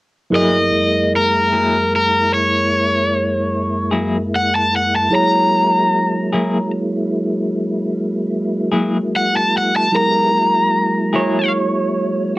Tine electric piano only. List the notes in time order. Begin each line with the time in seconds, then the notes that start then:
0.31 F#3 E4 G#4 A#4
5.10 F#3 E4 G#4 C#5
9.92 F#3 G#3 E4 A#4